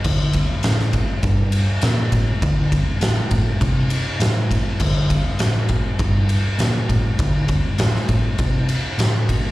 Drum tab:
CC |x---------------|----------------|x---------------|----------------|
RD |--x-x-x-x-x-x-x-|x-x-x-x-x-x-x-x-|--x-x-x-x-x-x-x-|x-x-x-x-x-x-x-x-|
SD |----oo------o---|----o-------o---|----o-------o---|----oo------o---|
BD |o-o---o-o-----o-|o-o---o-o-----o-|o-o---o-o-----o-|o-o---o-o-----o-|